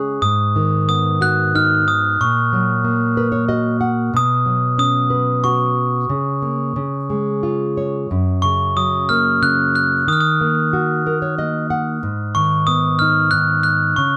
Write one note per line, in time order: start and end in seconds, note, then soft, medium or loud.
0.00 0.19 C#3 medium
0.00 0.20 G#3 medium
0.00 0.21 C#4 soft
0.00 0.21 G#4 soft
0.22 2.16 G#2 medium
0.22 0.88 D#6 medium
0.56 1.84 D#3 soft
0.88 2.16 B3 soft
0.88 1.23 D#6 medium
1.21 2.17 F#4 medium
1.21 1.56 F#6 medium
1.55 2.18 D#4 medium
1.55 1.89 F6 medium
1.88 2.18 D#6 medium
2.20 4.10 A#2 medium
2.20 3.46 C#6 medium
2.53 3.78 F#3 soft
2.84 4.10 A#3 soft
3.17 4.11 A#4 medium
3.17 3.32 B4 medium
3.32 3.48 C#5 medium
3.49 4.12 F#4 soft
3.49 3.79 D#5 medium
3.81 4.11 F#5 medium
4.14 6.05 B2 medium
4.14 4.76 D#6 loud
4.46 5.72 F#3 soft
4.78 6.05 C#4 soft
4.78 5.46 D#6 medium
5.10 6.06 B4 medium
5.44 6.08 F#4 medium
5.44 7.38 C#6 medium
6.10 6.74 C#3 medium
6.42 6.74 A#3 soft
6.76 8.06 C#3 medium
7.10 8.07 G#3 soft
7.43 8.08 F4 soft
7.77 8.09 C#5 soft
8.11 10.04 F#2 medium
8.42 9.41 C#3 soft
8.42 8.77 C#6 medium
8.77 10.04 F#3 soft
8.77 8.91 D#6 medium
9.09 10.05 A#3 soft
9.09 9.43 F6 medium
9.42 10.06 C#3 soft
9.42 9.73 F#6 medium
9.75 10.09 F#6 medium
10.07 11.98 D#3 medium
10.07 10.14 D#6 medium
10.12 10.20 F6 medium
10.21 11.65 D#6 medium
10.41 11.06 A#3 soft
10.73 11.98 F#4 medium
11.06 11.21 A#4 medium
11.22 11.37 C#5 medium
11.38 12.00 A#3 soft
11.38 11.68 D#5 medium
11.70 12.00 F#5 medium
12.03 13.93 G#2 medium
12.35 13.32 D#3 soft
12.35 12.68 C#6 medium
12.67 13.93 B3 soft
12.67 13.00 D#6 medium
12.99 13.95 D#4 medium
12.99 13.32 F6 medium
13.31 13.95 D#3 soft
13.31 13.62 F#6 medium
13.63 13.97 F#6 medium
13.96 14.17 C#3 medium
13.96 14.17 C#6 medium